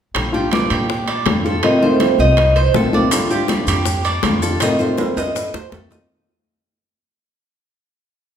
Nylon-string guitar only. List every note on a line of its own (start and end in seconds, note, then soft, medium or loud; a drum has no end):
0.14 0.33 D3 medium
0.14 0.32 G3 medium
0.14 0.33 D4 medium
0.14 0.31 F4 medium
0.33 0.50 G3 medium
0.33 0.51 D4 medium
0.33 0.51 F4 medium
0.51 0.88 D3 soft
0.51 0.88 G3 soft
0.51 0.89 D4 soft
0.51 0.89 F4 soft
0.89 muted nylon-string guitar stroke medium
1.26 1.44 D3 medium
1.26 1.44 G3 medium
1.26 1.44 D4 soft
1.26 1.43 F4 medium
1.44 1.63 G3 soft
1.44 1.63 D4 soft
1.44 1.62 F4 medium
1.63 1.81 C3 medium
1.63 1.81 D#3 medium
1.63 1.81 A3 medium
1.63 1.81 C4 medium
1.63 1.80 F4 medium
1.81 2.00 D#3 medium
1.81 2.00 A3 medium
1.81 2.00 C4 medium
1.81 2.00 F4 medium
2.01 2.36 D#3 soft
2.01 2.36 A3 soft
2.01 2.37 C4 soft
2.01 2.37 F4 soft
2.37 muted nylon-string guitar stroke medium
2.74 2.92 D#3 soft
2.74 2.92 A3 soft
2.74 2.92 C4 medium
2.74 2.91 F4 medium
2.92 3.11 D#3 medium
2.92 3.11 A3 soft
2.92 3.11 C4 medium
2.92 3.11 F4 medium
3.11 3.29 D3 medium
3.11 3.30 G3 medium
3.11 3.30 D4 medium
3.11 3.30 F4 medium
3.31 3.48 G3 medium
3.31 3.49 D4 medium
3.31 3.48 F4 medium
3.49 3.85 D3 soft
3.49 3.85 G3 soft
3.49 3.86 D4 soft
3.49 3.86 F4 soft
3.86 muted nylon-string guitar stroke medium
4.24 4.42 D3 soft
4.24 4.42 G3 medium
4.24 4.42 D4 medium
4.24 4.41 F4 medium
4.43 4.61 G3 medium
4.43 4.61 D4 medium
4.43 4.60 F4 medium
4.61 4.79 C3 medium
4.61 4.79 D#3 medium
4.61 4.79 A3 medium
4.61 4.79 C4 medium
4.61 4.78 F4 medium
4.79 4.97 D#3 medium
4.79 4.98 A3 medium
4.79 4.97 C4 medium
4.79 4.97 F4 medium
4.99 5.34 D#3 soft
4.99 5.35 A3 soft
4.99 5.35 C4 soft
4.99 5.35 F4 soft
5.36 muted nylon-string guitar stroke medium
5.71 5.90 D#3 medium
5.71 5.90 A3 soft
5.71 5.90 C4 medium
5.71 5.89 F4 medium
5.90 6.09 D#3 soft
5.90 6.09 A3 medium
5.90 6.09 C4 medium
5.90 6.09 F4 medium